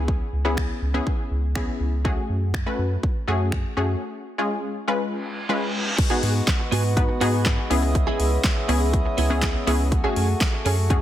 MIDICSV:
0, 0, Header, 1, 8, 480
1, 0, Start_track
1, 0, Tempo, 491803
1, 80, Time_signature, 4, 2, 24, 8
1, 10753, End_track
2, 0, Start_track
2, 0, Title_t, "Clean electric guitar"
2, 0, Program_c, 0, 27
2, 5954, Note_on_c, 0, 68, 91
2, 5963, Note_on_c, 0, 66, 74
2, 5969, Note_on_c, 0, 59, 69
2, 6062, Note_off_c, 0, 59, 0
2, 6069, Note_off_c, 0, 66, 0
2, 6074, Note_on_c, 0, 59, 68
2, 6077, Note_off_c, 0, 68, 0
2, 6081, Note_on_c, 0, 66, 68
2, 6089, Note_on_c, 0, 68, 72
2, 6184, Note_off_c, 0, 68, 0
2, 6194, Note_off_c, 0, 66, 0
2, 6235, Note_off_c, 0, 59, 0
2, 6554, Note_on_c, 0, 59, 87
2, 6563, Note_on_c, 0, 66, 98
2, 6569, Note_on_c, 0, 68, 98
2, 6663, Note_off_c, 0, 68, 0
2, 6673, Note_off_c, 0, 66, 0
2, 6749, Note_off_c, 0, 59, 0
2, 7033, Note_on_c, 0, 59, 84
2, 7041, Note_on_c, 0, 66, 88
2, 7047, Note_on_c, 0, 68, 93
2, 7144, Note_off_c, 0, 68, 0
2, 7152, Note_off_c, 0, 66, 0
2, 7156, Note_on_c, 0, 68, 60
2, 7158, Note_off_c, 0, 59, 0
2, 7164, Note_on_c, 0, 66, 61
2, 7170, Note_on_c, 0, 59, 53
2, 7264, Note_off_c, 0, 59, 0
2, 7270, Note_off_c, 0, 66, 0
2, 7274, Note_off_c, 0, 68, 0
2, 7876, Note_on_c, 0, 68, 90
2, 7883, Note_on_c, 0, 64, 82
2, 7890, Note_on_c, 0, 59, 80
2, 7987, Note_off_c, 0, 59, 0
2, 7994, Note_off_c, 0, 64, 0
2, 7999, Note_on_c, 0, 59, 63
2, 8000, Note_off_c, 0, 68, 0
2, 8005, Note_on_c, 0, 64, 65
2, 8012, Note_on_c, 0, 68, 68
2, 8107, Note_off_c, 0, 68, 0
2, 8117, Note_off_c, 0, 64, 0
2, 8158, Note_off_c, 0, 59, 0
2, 8476, Note_on_c, 0, 59, 84
2, 8484, Note_on_c, 0, 64, 87
2, 8490, Note_on_c, 0, 68, 87
2, 8585, Note_off_c, 0, 68, 0
2, 8595, Note_off_c, 0, 64, 0
2, 8670, Note_off_c, 0, 59, 0
2, 8956, Note_on_c, 0, 59, 87
2, 8964, Note_on_c, 0, 64, 92
2, 8970, Note_on_c, 0, 68, 99
2, 9065, Note_off_c, 0, 68, 0
2, 9073, Note_off_c, 0, 64, 0
2, 9076, Note_on_c, 0, 68, 65
2, 9079, Note_off_c, 0, 59, 0
2, 9084, Note_on_c, 0, 64, 64
2, 9090, Note_on_c, 0, 59, 51
2, 9236, Note_off_c, 0, 68, 0
2, 9240, Note_off_c, 0, 64, 0
2, 9243, Note_off_c, 0, 59, 0
2, 9436, Note_on_c, 0, 59, 83
2, 9445, Note_on_c, 0, 64, 96
2, 9451, Note_on_c, 0, 68, 94
2, 9548, Note_off_c, 0, 68, 0
2, 9558, Note_off_c, 0, 64, 0
2, 9630, Note_off_c, 0, 59, 0
2, 9799, Note_on_c, 0, 68, 94
2, 9806, Note_on_c, 0, 61, 80
2, 9813, Note_on_c, 0, 57, 69
2, 9905, Note_off_c, 0, 57, 0
2, 9913, Note_off_c, 0, 61, 0
2, 9916, Note_on_c, 0, 57, 70
2, 9919, Note_off_c, 0, 68, 0
2, 9924, Note_on_c, 0, 61, 69
2, 9930, Note_on_c, 0, 68, 83
2, 10027, Note_off_c, 0, 68, 0
2, 10037, Note_off_c, 0, 61, 0
2, 10076, Note_off_c, 0, 57, 0
2, 10395, Note_on_c, 0, 57, 88
2, 10403, Note_on_c, 0, 61, 92
2, 10409, Note_on_c, 0, 68, 106
2, 10502, Note_off_c, 0, 68, 0
2, 10513, Note_off_c, 0, 61, 0
2, 10590, Note_off_c, 0, 57, 0
2, 10753, End_track
3, 0, Start_track
3, 0, Title_t, "Harmonium"
3, 0, Program_c, 1, 20
3, 5845, Note_on_c, 1, 59, 73
3, 5846, Note_on_c, 1, 56, 78
3, 5846, Note_on_c, 1, 66, 88
3, 7506, Note_off_c, 1, 66, 0
3, 7521, Note_on_c, 1, 75, 72
3, 7522, Note_on_c, 1, 49, 76
3, 7522, Note_on_c, 1, 64, 86
3, 9644, Note_off_c, 1, 59, 0
3, 9645, Note_off_c, 1, 56, 0
3, 9659, Note_off_c, 1, 49, 0
3, 9659, Note_off_c, 1, 64, 0
3, 9659, Note_off_c, 1, 75, 0
3, 9681, Note_on_c, 1, 66, 87
3, 9682, Note_on_c, 1, 57, 73
3, 9682, Note_on_c, 1, 68, 78
3, 10753, Note_off_c, 1, 57, 0
3, 10753, Note_off_c, 1, 66, 0
3, 10753, Note_off_c, 1, 68, 0
3, 10753, End_track
4, 0, Start_track
4, 0, Title_t, "Synth pluck"
4, 0, Program_c, 2, 84
4, 0, Note_on_c, 2, 59, 98
4, 0, Note_on_c, 2, 61, 85
4, 0, Note_on_c, 2, 64, 87
4, 0, Note_on_c, 2, 68, 110
4, 342, Note_off_c, 2, 59, 0
4, 343, Note_off_c, 2, 61, 0
4, 344, Note_off_c, 2, 64, 0
4, 345, Note_off_c, 2, 68, 0
4, 436, Note_on_c, 2, 59, 98
4, 438, Note_on_c, 2, 61, 85
4, 439, Note_on_c, 2, 64, 86
4, 441, Note_on_c, 2, 68, 103
4, 840, Note_off_c, 2, 59, 0
4, 841, Note_off_c, 2, 61, 0
4, 842, Note_off_c, 2, 64, 0
4, 842, Note_off_c, 2, 68, 0
4, 918, Note_on_c, 2, 59, 96
4, 920, Note_on_c, 2, 61, 88
4, 921, Note_on_c, 2, 64, 84
4, 923, Note_on_c, 2, 68, 107
4, 1421, Note_off_c, 2, 59, 0
4, 1423, Note_off_c, 2, 61, 0
4, 1423, Note_off_c, 2, 64, 0
4, 1424, Note_off_c, 2, 68, 0
4, 1520, Note_on_c, 2, 59, 95
4, 1522, Note_on_c, 2, 61, 89
4, 1524, Note_on_c, 2, 64, 93
4, 1525, Note_on_c, 2, 68, 107
4, 1922, Note_off_c, 2, 59, 0
4, 1923, Note_off_c, 2, 61, 0
4, 1924, Note_off_c, 2, 64, 0
4, 1924, Note_off_c, 2, 68, 0
4, 1997, Note_on_c, 2, 57, 93
4, 1998, Note_on_c, 2, 61, 86
4, 2000, Note_on_c, 2, 66, 92
4, 2002, Note_on_c, 2, 68, 107
4, 2501, Note_off_c, 2, 57, 0
4, 2501, Note_off_c, 2, 61, 0
4, 2502, Note_off_c, 2, 66, 0
4, 2503, Note_off_c, 2, 68, 0
4, 2599, Note_on_c, 2, 57, 95
4, 2601, Note_on_c, 2, 61, 84
4, 2602, Note_on_c, 2, 66, 87
4, 2604, Note_on_c, 2, 71, 103
4, 3102, Note_off_c, 2, 57, 0
4, 3103, Note_off_c, 2, 61, 0
4, 3103, Note_off_c, 2, 66, 0
4, 3104, Note_off_c, 2, 71, 0
4, 3197, Note_on_c, 2, 57, 97
4, 3199, Note_on_c, 2, 61, 88
4, 3201, Note_on_c, 2, 66, 86
4, 3203, Note_on_c, 2, 68, 107
4, 3600, Note_off_c, 2, 57, 0
4, 3601, Note_off_c, 2, 61, 0
4, 3602, Note_off_c, 2, 66, 0
4, 3604, Note_off_c, 2, 68, 0
4, 3678, Note_on_c, 2, 57, 93
4, 3679, Note_on_c, 2, 61, 86
4, 3681, Note_on_c, 2, 66, 82
4, 3682, Note_on_c, 2, 68, 104
4, 3919, Note_off_c, 2, 57, 0
4, 3919, Note_off_c, 2, 61, 0
4, 3920, Note_off_c, 2, 66, 0
4, 3921, Note_off_c, 2, 68, 0
4, 4278, Note_on_c, 2, 56, 97
4, 4280, Note_on_c, 2, 61, 85
4, 4283, Note_on_c, 2, 65, 88
4, 4284, Note_on_c, 2, 68, 98
4, 4681, Note_off_c, 2, 56, 0
4, 4682, Note_off_c, 2, 61, 0
4, 4683, Note_off_c, 2, 65, 0
4, 4684, Note_off_c, 2, 68, 0
4, 4759, Note_on_c, 2, 56, 96
4, 4762, Note_on_c, 2, 61, 88
4, 4763, Note_on_c, 2, 65, 87
4, 4764, Note_on_c, 2, 71, 107
4, 5262, Note_off_c, 2, 56, 0
4, 5263, Note_off_c, 2, 61, 0
4, 5264, Note_off_c, 2, 65, 0
4, 5264, Note_off_c, 2, 71, 0
4, 5359, Note_on_c, 2, 56, 101
4, 5361, Note_on_c, 2, 61, 88
4, 5363, Note_on_c, 2, 65, 89
4, 5364, Note_on_c, 2, 71, 109
4, 5761, Note_off_c, 2, 56, 0
4, 5762, Note_off_c, 2, 61, 0
4, 5763, Note_off_c, 2, 65, 0
4, 5764, Note_off_c, 2, 71, 0
4, 5961, Note_on_c, 2, 59, 85
4, 5963, Note_on_c, 2, 63, 78
4, 5965, Note_on_c, 2, 66, 80
4, 5965, Note_on_c, 2, 68, 91
4, 6664, Note_off_c, 2, 59, 0
4, 6665, Note_off_c, 2, 63, 0
4, 6665, Note_off_c, 2, 66, 0
4, 6666, Note_off_c, 2, 68, 0
4, 6799, Note_on_c, 2, 59, 90
4, 6801, Note_on_c, 2, 63, 80
4, 6802, Note_on_c, 2, 66, 82
4, 6804, Note_on_c, 2, 71, 96
4, 7001, Note_off_c, 2, 59, 0
4, 7001, Note_off_c, 2, 63, 0
4, 7002, Note_off_c, 2, 66, 0
4, 7003, Note_off_c, 2, 71, 0
4, 7039, Note_on_c, 2, 59, 102
4, 7041, Note_on_c, 2, 63, 93
4, 7042, Note_on_c, 2, 66, 91
4, 7044, Note_on_c, 2, 68, 115
4, 7441, Note_off_c, 2, 59, 0
4, 7442, Note_off_c, 2, 63, 0
4, 7443, Note_off_c, 2, 66, 0
4, 7444, Note_off_c, 2, 68, 0
4, 7517, Note_on_c, 2, 59, 90
4, 7519, Note_on_c, 2, 61, 85
4, 7521, Note_on_c, 2, 64, 87
4, 7521, Note_on_c, 2, 68, 107
4, 8322, Note_off_c, 2, 59, 0
4, 8323, Note_off_c, 2, 61, 0
4, 8324, Note_off_c, 2, 64, 0
4, 8324, Note_off_c, 2, 68, 0
4, 8478, Note_on_c, 2, 59, 84
4, 8480, Note_on_c, 2, 61, 77
4, 8481, Note_on_c, 2, 64, 77
4, 8483, Note_on_c, 2, 68, 98
4, 8982, Note_off_c, 2, 59, 0
4, 8982, Note_off_c, 2, 61, 0
4, 8983, Note_off_c, 2, 64, 0
4, 8984, Note_off_c, 2, 68, 0
4, 9078, Note_on_c, 2, 59, 91
4, 9080, Note_on_c, 2, 61, 83
4, 9082, Note_on_c, 2, 64, 85
4, 9083, Note_on_c, 2, 68, 106
4, 9381, Note_off_c, 2, 59, 0
4, 9382, Note_off_c, 2, 61, 0
4, 9383, Note_off_c, 2, 64, 0
4, 9383, Note_off_c, 2, 68, 0
4, 9438, Note_on_c, 2, 59, 100
4, 9440, Note_on_c, 2, 61, 95
4, 9440, Note_on_c, 2, 64, 94
4, 9444, Note_on_c, 2, 68, 110
4, 9679, Note_off_c, 2, 59, 0
4, 9680, Note_off_c, 2, 61, 0
4, 9680, Note_off_c, 2, 64, 0
4, 9682, Note_off_c, 2, 68, 0
4, 9797, Note_on_c, 2, 57, 85
4, 9798, Note_on_c, 2, 61, 77
4, 9800, Note_on_c, 2, 66, 79
4, 9801, Note_on_c, 2, 68, 99
4, 10502, Note_off_c, 2, 57, 0
4, 10502, Note_off_c, 2, 61, 0
4, 10503, Note_off_c, 2, 66, 0
4, 10503, Note_off_c, 2, 68, 0
4, 10637, Note_on_c, 2, 57, 89
4, 10640, Note_on_c, 2, 61, 82
4, 10641, Note_on_c, 2, 66, 81
4, 10643, Note_on_c, 2, 68, 98
4, 10753, Note_off_c, 2, 57, 0
4, 10753, Note_off_c, 2, 61, 0
4, 10753, Note_off_c, 2, 66, 0
4, 10753, Note_off_c, 2, 68, 0
4, 10753, End_track
5, 0, Start_track
5, 0, Title_t, "Analog synth bass"
5, 0, Program_c, 3, 38
5, 0, Note_on_c, 3, 37, 102
5, 196, Note_off_c, 3, 37, 0
5, 321, Note_on_c, 3, 37, 91
5, 677, Note_off_c, 3, 37, 0
5, 802, Note_on_c, 3, 37, 104
5, 979, Note_off_c, 3, 37, 0
5, 1279, Note_on_c, 3, 37, 104
5, 1635, Note_off_c, 3, 37, 0
5, 1758, Note_on_c, 3, 37, 102
5, 2115, Note_off_c, 3, 37, 0
5, 2239, Note_on_c, 3, 42, 90
5, 2595, Note_off_c, 3, 42, 0
5, 2719, Note_on_c, 3, 42, 100
5, 2898, Note_off_c, 3, 42, 0
5, 3201, Note_on_c, 3, 42, 101
5, 3557, Note_off_c, 3, 42, 0
5, 3681, Note_on_c, 3, 42, 98
5, 3858, Note_off_c, 3, 42, 0
5, 6080, Note_on_c, 3, 44, 91
5, 6258, Note_off_c, 3, 44, 0
5, 6560, Note_on_c, 3, 44, 98
5, 6916, Note_off_c, 3, 44, 0
5, 7041, Note_on_c, 3, 44, 100
5, 7397, Note_off_c, 3, 44, 0
5, 7521, Note_on_c, 3, 37, 90
5, 7877, Note_off_c, 3, 37, 0
5, 8000, Note_on_c, 3, 37, 92
5, 8178, Note_off_c, 3, 37, 0
5, 8479, Note_on_c, 3, 37, 105
5, 8835, Note_off_c, 3, 37, 0
5, 8958, Note_on_c, 3, 37, 106
5, 9315, Note_off_c, 3, 37, 0
5, 9439, Note_on_c, 3, 37, 97
5, 9795, Note_off_c, 3, 37, 0
5, 9918, Note_on_c, 3, 42, 91
5, 10097, Note_off_c, 3, 42, 0
5, 10398, Note_on_c, 3, 42, 104
5, 10753, Note_off_c, 3, 42, 0
5, 10753, End_track
6, 0, Start_track
6, 0, Title_t, "Reverse cymbal"
6, 0, Program_c, 4, 119
6, 4881, Note_on_c, 4, 60, 83
6, 5841, Note_off_c, 4, 60, 0
6, 10753, End_track
7, 0, Start_track
7, 0, Title_t, "Muted clean electric guitar strokes"
7, 5836, Note_on_c, 9, 29, 42
7, 5934, Note_off_c, 9, 29, 0
7, 6196, Note_on_c, 9, 29, 46
7, 6294, Note_off_c, 9, 29, 0
7, 6436, Note_on_c, 9, 29, 45
7, 6533, Note_off_c, 9, 29, 0
7, 6674, Note_on_c, 9, 29, 55
7, 6772, Note_off_c, 9, 29, 0
7, 6798, Note_on_c, 9, 29, 36
7, 6895, Note_off_c, 9, 29, 0
7, 6916, Note_on_c, 9, 29, 49
7, 7013, Note_off_c, 9, 29, 0
7, 7276, Note_on_c, 9, 29, 38
7, 7374, Note_off_c, 9, 29, 0
7, 7398, Note_on_c, 9, 29, 50
7, 7495, Note_off_c, 9, 29, 0
7, 7638, Note_on_c, 9, 29, 58
7, 7735, Note_off_c, 9, 29, 0
7, 7758, Note_on_c, 9, 29, 38
7, 7856, Note_off_c, 9, 29, 0
7, 8119, Note_on_c, 9, 29, 50
7, 8216, Note_off_c, 9, 29, 0
7, 8358, Note_on_c, 9, 29, 41
7, 8456, Note_off_c, 9, 29, 0
7, 8597, Note_on_c, 9, 29, 42
7, 8695, Note_off_c, 9, 29, 0
7, 8718, Note_on_c, 9, 29, 47
7, 8816, Note_off_c, 9, 29, 0
7, 8839, Note_on_c, 9, 29, 55
7, 8937, Note_off_c, 9, 29, 0
7, 9318, Note_on_c, 9, 29, 46
7, 9416, Note_off_c, 9, 29, 0
7, 9559, Note_on_c, 9, 29, 42
7, 9657, Note_off_c, 9, 29, 0
7, 9679, Note_on_c, 9, 29, 54
7, 9777, Note_off_c, 9, 29, 0
7, 10039, Note_on_c, 9, 29, 47
7, 10137, Note_off_c, 9, 29, 0
7, 10277, Note_on_c, 9, 29, 39
7, 10375, Note_off_c, 9, 29, 0
7, 10514, Note_on_c, 9, 29, 52
7, 10611, Note_off_c, 9, 29, 0
7, 10753, End_track
8, 0, Start_track
8, 0, Title_t, "Drums"
8, 80, Note_on_c, 9, 36, 112
8, 178, Note_off_c, 9, 36, 0
8, 558, Note_on_c, 9, 36, 104
8, 563, Note_on_c, 9, 26, 113
8, 656, Note_off_c, 9, 36, 0
8, 660, Note_off_c, 9, 26, 0
8, 1041, Note_on_c, 9, 36, 105
8, 1139, Note_off_c, 9, 36, 0
8, 1517, Note_on_c, 9, 26, 111
8, 1520, Note_on_c, 9, 36, 113
8, 1615, Note_off_c, 9, 26, 0
8, 1617, Note_off_c, 9, 36, 0
8, 2001, Note_on_c, 9, 36, 107
8, 2098, Note_off_c, 9, 36, 0
8, 2479, Note_on_c, 9, 36, 108
8, 2483, Note_on_c, 9, 26, 121
8, 2576, Note_off_c, 9, 36, 0
8, 2581, Note_off_c, 9, 26, 0
8, 2961, Note_on_c, 9, 36, 104
8, 3059, Note_off_c, 9, 36, 0
8, 3438, Note_on_c, 9, 26, 105
8, 3440, Note_on_c, 9, 36, 113
8, 3535, Note_off_c, 9, 26, 0
8, 3537, Note_off_c, 9, 36, 0
8, 5841, Note_on_c, 9, 36, 114
8, 5841, Note_on_c, 9, 42, 77
8, 5841, Note_on_c, 9, 49, 99
8, 5938, Note_off_c, 9, 36, 0
8, 5938, Note_off_c, 9, 49, 0
8, 5939, Note_off_c, 9, 42, 0
8, 6080, Note_on_c, 9, 46, 68
8, 6178, Note_off_c, 9, 46, 0
8, 6319, Note_on_c, 9, 36, 113
8, 6320, Note_on_c, 9, 38, 99
8, 6322, Note_on_c, 9, 42, 65
8, 6324, Note_on_c, 9, 39, 120
8, 6417, Note_off_c, 9, 36, 0
8, 6417, Note_off_c, 9, 38, 0
8, 6419, Note_off_c, 9, 42, 0
8, 6422, Note_off_c, 9, 39, 0
8, 6562, Note_on_c, 9, 46, 83
8, 6660, Note_off_c, 9, 46, 0
8, 6801, Note_on_c, 9, 36, 109
8, 6805, Note_on_c, 9, 42, 71
8, 6899, Note_off_c, 9, 36, 0
8, 6902, Note_off_c, 9, 42, 0
8, 7040, Note_on_c, 9, 46, 68
8, 7137, Note_off_c, 9, 46, 0
8, 7274, Note_on_c, 9, 38, 88
8, 7279, Note_on_c, 9, 36, 120
8, 7279, Note_on_c, 9, 39, 109
8, 7281, Note_on_c, 9, 42, 80
8, 7372, Note_off_c, 9, 38, 0
8, 7376, Note_off_c, 9, 39, 0
8, 7377, Note_off_c, 9, 36, 0
8, 7378, Note_off_c, 9, 42, 0
8, 7522, Note_on_c, 9, 46, 80
8, 7620, Note_off_c, 9, 46, 0
8, 7760, Note_on_c, 9, 36, 109
8, 7760, Note_on_c, 9, 42, 77
8, 7857, Note_off_c, 9, 36, 0
8, 7858, Note_off_c, 9, 42, 0
8, 8000, Note_on_c, 9, 46, 73
8, 8097, Note_off_c, 9, 46, 0
8, 8237, Note_on_c, 9, 38, 98
8, 8238, Note_on_c, 9, 36, 117
8, 8239, Note_on_c, 9, 42, 63
8, 8242, Note_on_c, 9, 39, 119
8, 8335, Note_off_c, 9, 38, 0
8, 8336, Note_off_c, 9, 36, 0
8, 8337, Note_off_c, 9, 42, 0
8, 8340, Note_off_c, 9, 39, 0
8, 8481, Note_on_c, 9, 46, 83
8, 8579, Note_off_c, 9, 46, 0
8, 8720, Note_on_c, 9, 36, 107
8, 8723, Note_on_c, 9, 42, 72
8, 8818, Note_off_c, 9, 36, 0
8, 8821, Note_off_c, 9, 42, 0
8, 8959, Note_on_c, 9, 46, 67
8, 9056, Note_off_c, 9, 46, 0
8, 9194, Note_on_c, 9, 38, 89
8, 9198, Note_on_c, 9, 39, 110
8, 9199, Note_on_c, 9, 36, 121
8, 9201, Note_on_c, 9, 42, 82
8, 9291, Note_off_c, 9, 38, 0
8, 9296, Note_off_c, 9, 39, 0
8, 9297, Note_off_c, 9, 36, 0
8, 9298, Note_off_c, 9, 42, 0
8, 9443, Note_on_c, 9, 46, 80
8, 9540, Note_off_c, 9, 46, 0
8, 9681, Note_on_c, 9, 36, 110
8, 9682, Note_on_c, 9, 42, 78
8, 9778, Note_off_c, 9, 36, 0
8, 9780, Note_off_c, 9, 42, 0
8, 9920, Note_on_c, 9, 46, 69
8, 10018, Note_off_c, 9, 46, 0
8, 10158, Note_on_c, 9, 36, 116
8, 10158, Note_on_c, 9, 38, 98
8, 10160, Note_on_c, 9, 42, 66
8, 10163, Note_on_c, 9, 39, 122
8, 10256, Note_off_c, 9, 36, 0
8, 10256, Note_off_c, 9, 38, 0
8, 10258, Note_off_c, 9, 42, 0
8, 10260, Note_off_c, 9, 39, 0
8, 10401, Note_on_c, 9, 46, 83
8, 10499, Note_off_c, 9, 46, 0
8, 10641, Note_on_c, 9, 36, 112
8, 10644, Note_on_c, 9, 42, 69
8, 10739, Note_off_c, 9, 36, 0
8, 10741, Note_off_c, 9, 42, 0
8, 10753, End_track
0, 0, End_of_file